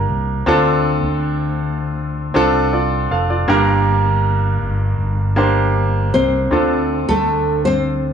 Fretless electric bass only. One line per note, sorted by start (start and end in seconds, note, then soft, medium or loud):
0.09 0.44 C2 medium
0.47 1.00 D2 loud
1.03 2.31 D2 loud
2.36 3.07 C2 medium
3.11 3.46 F1 medium
3.48 4.57 G1 loud
4.61 4.97 G1 medium
4.99 6.10 G1 loud
6.14 6.50 C2 medium
6.52 7.05 D2 loud
7.09 8.13 D2 medium